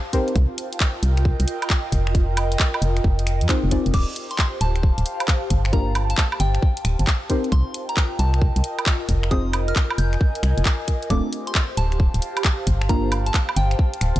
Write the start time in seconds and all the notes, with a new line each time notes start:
Already playing: G4 C5 F5 A5
0.13 C4 D#4 F4 G4 A#4 C5, kick, open hi-hat
0.28 G5, closed hi-hat
0.36 C2, kick, closed hi-hat
0.45 A#4
0.58 open hi-hat
0.72 D#5, closed hi-hat
0.80 kick, clap, closed hi-hat
1.03 C2, open hi-hat
1.17 finger snap, closed hi-hat
1.25 kick
1.40 C2, closed hi-hat
1.48 open hi-hat
1.62 closed hi-hat, high woodblock
1.70 kick, clap, closed hi-hat
1.92 F1, kick, open hi-hat
2.07 finger snap
2.15 kick, closed hi-hat
2.37 open hi-hat, high woodblock
2.52 closed hi-hat
2.59 kick, clap, closed hi-hat
2.74 high woodblock
2.82 F1, open hi-hat
2.97 finger snap, closed hi-hat
3.04 F1, kick
3.19 open hi-hat
3.27 finger snap, open hi-hat
3.41 F2, closed hi-hat
3.49 C4 D#4 F4 G#4 C5, kick, clap, closed hi-hat
3.64 F1
3.71 C4 D#4 F4 G#4 D5, kick, open hi-hat
3.86 F1, closed hi-hat
3.94 D1 G4 D6, kick, closed hi-hat, crash
3.99 C5
4.16 open hi-hat
4.31 C6, closed hi-hat
4.37 F5, kick, clap, closed hi-hat
4.54 A5
4.61 D1 A5, open hi-hat
4.76 finger snap, closed hi-hat
4.83 kick
4.98 D1, closed hi-hat
5.06 open hi-hat
5.20 closed hi-hat, high woodblock
5.28 kick, clap, closed hi-hat
5.50 G1, kick, open hi-hat
5.65 finger snap
5.73 A#3 D4 F4 G4 A#4 A#5, kick, closed hi-hat
5.95 open hi-hat, high woodblock
6.10 A5, closed hi-hat
6.18 kick, clap, closed hi-hat
6.32 high woodblock
6.40 G1 G5, open hi-hat
6.55 finger snap, closed hi-hat
6.62 kick
6.77 open hi-hat
6.85 D1, finger snap, open hi-hat
6.99 G1, closed hi-hat
7.07 kick, clap, closed hi-hat
7.30 C4 D#4 F4 G4 A#4 C5, kick, open hi-hat
7.44 A#4 G5, closed hi-hat
7.52 C2 C6, kick, closed hi-hat
7.74 D#5, open hi-hat
7.89 A#5, closed hi-hat
7.97 kick, clap, closed hi-hat
8.19 C2 A5, open hi-hat
8.34 finger snap, closed hi-hat
8.42 kick
8.56 C2, closed hi-hat
8.64 open hi-hat
8.79 closed hi-hat, high woodblock
8.86 kick, clap, closed hi-hat
9.09 F1, kick, open hi-hat
9.23 finger snap
9.31 C4 D#4 F4 G#4 C5 D#6, kick, closed hi-hat
9.53 open hi-hat, high woodblock
9.63 G#5
9.68 F6, closed hi-hat
9.76 kick, clap, closed hi-hat
9.90 high woodblock
9.98 F1 G6, open hi-hat
10.13 finger snap, closed hi-hat
10.21 kick
10.35 open hi-hat
10.43 C2, finger snap, open hi-hat
10.58 F1, closed hi-hat
10.65 kick, clap, closed hi-hat
10.88 kick, open hi-hat
11.03 closed hi-hat
11.10 D1 A3 C4 D4 F4 G4 A4 D6, kick, closed hi-hat
11.17 C5
11.33 open hi-hat
11.47 C6, closed hi-hat
11.55 kick, clap, closed hi-hat
11.68 F5 A5
11.77 D1 A5, open hi-hat
11.92 finger snap, closed hi-hat
12.00 kick
12.14 D1, closed hi-hat
12.22 open hi-hat
12.37 closed hi-hat, high woodblock
12.45 kick, clap, closed hi-hat
12.67 G1, kick, open hi-hat
12.82 finger snap
12.89 A#3 D4 F4 G4 A#4 A#5, kick, closed hi-hat
13.12 open hi-hat, high woodblock
13.26 A5, closed hi-hat
13.34 kick, clap, closed hi-hat
13.49 high woodblock
13.56 G1 G5, open hi-hat
13.71 finger snap, closed hi-hat
13.79 kick
13.94 open hi-hat
14.01 D1, finger snap, open hi-hat
14.16 G1, closed hi-hat